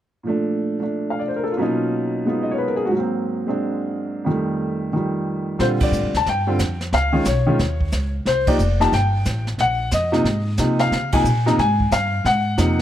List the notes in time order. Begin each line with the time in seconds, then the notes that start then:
0.23 A#2 F3 A3
0.29 D4
0.80 A3 D4
1.10 F5
1.19 D5
1.28 C5
1.36 A#4
1.44 A4
1.52 F4
1.57 B2 F#3 A#3 C#4
1.61 D#4 F4
2.25 G#3 B3 D#4 F4
2.43 D#5
2.51 C#5
2.58 B4
2.68 A#4
2.76 G#4
2.85 G#2 F#4
2.92 F#3 A#3
2.99 C4
3.47 G#3 C4 D4
4.24 F2 D#3 G3
4.29 A3
4.93 D#3 F3 G3
5.59 A#2 D3 G3 C4 F4 C5, brush sweep, kick, snare
5.80 D5, kick, ride
5.92 A2, hi-hat pedal
6.02 F2
6.14 D2 A5, snare
6.26 G2 G5, brush sweep, kick, snare
6.47 D3 G3 C4 F4
6.59 F2, kick, snare, hi-hat pedal
6.81 snare
6.92 C#2 F5, brush sweep, kick, snare
7.12 D#3 G#3 C#4 F4
7.25 B1 C#5, kick, snare, hi-hat pedal
7.47 D#3 G#3 C#4 F4
7.59 D#2, brush sweep, kick, snare
7.81 kick
7.92 C#2, kick, snare, hi-hat pedal
8.25 C2 C5, brush sweep, kick, snare
8.47 F3 A#3 D#4 G4 D5, kick, ride
8.58 F1, hi-hat pedal
8.80 F3 A#3 D#4 G4 A5, snare
8.92 G1 G5, brush sweep, kick, snare
9.25 A1, kick, snare, hi-hat pedal
9.47 snare
9.58 A#1 F#5, brush sweep, kick, snare
9.91 F2 D#5, kick, snare, hi-hat pedal
10.12 C3 F3 A#3 D#4, snare
10.24 G#2, brush sweep, kick, snare
10.57 C3 F3 A#3 D#4, kick, snare, hi-hat pedal
10.79 F5, snare
10.91 C#3, brush sweep, kick, snare
11.12 C3 F3 A#3 D#4 G#5, kick, ride
11.24 A#2, hi-hat pedal
11.46 C3 F3 A#3 D#4 A#5, snare
11.58 G#2 G#5, brush sweep, kick, snare
11.80 kick
11.91 G2 F5, kick, snare, hi-hat pedal
12.24 G#2 F#5, brush sweep, kick, snare
12.58 F2 C3 F3 A#3 D#4, kick, snare, hi-hat pedal